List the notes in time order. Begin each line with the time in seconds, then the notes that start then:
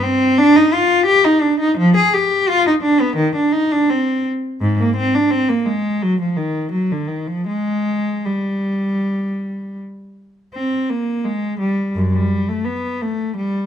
0.03 C4
0.38 D4
0.56 D#4
0.73 F4
1.06 G4
1.25 D#4
1.41 D4
1.60 D#4
1.77 F3
1.96 G#4
2.14 G4
2.49 F4
2.67 D#4
2.82 D4
3.01 B3
3.16 D#3
3.36 D4
3.53 D#4
3.72 D4
3.90 C4
4.61 G#2
4.80 A#3
4.96 C4
5.15 D4
5.31 C4
5.49 A#3
5.66 G#3
6.03 F#3
6.21 F3
6.37 D#3
6.72 F#3
6.92 D3
7.08 D#3
7.28 F3
7.47 G#3
8.25 G3
10.54 C4
10.90 A#3
11.24 G#3
11.60 G3
11.95 F#2
12.13 G3
12.49 A3
12.65 B3
13.02 A3
13.37 G3